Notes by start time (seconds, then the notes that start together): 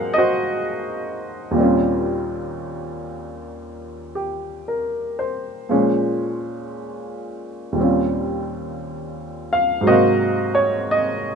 Already playing: G#2 F#3 G#3 A#3 C4 D#4 A#4 C5 D#5 F5 F#5 G#5
0.14 D#5
0.18 F#4 C5
1.51 D#2 A#2
1.56 G3 C4
1.60 C#4 F4
4.15 G4
4.68 A#4
5.19 C5
5.69 A#2 F3 G#3 C#4
7.72 D#2 A#2 G3
7.79 C4 C#4
7.83 F4
9.53 F5
9.81 G#2 F#3
9.86 C3 A#3 F#4 C5 D#5
9.92 F5
10.55 C#5
10.91 D#5